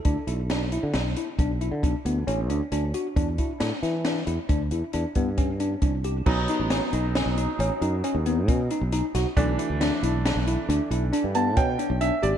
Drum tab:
CC |--------------|--------------|x-------------|--------------|
HH |xxxxxxxxxxxxxx|xxxxxxxxxxxxxx|-xxxxxxxxxxxxx|xxxxxxxxxxxxxx|
SD |--o-o---------|--ooo---------|--o-o--------o|--o-o---------|
BD |o-----o-o-----|oo----o--oo-o-|o---------o---|o---------o---|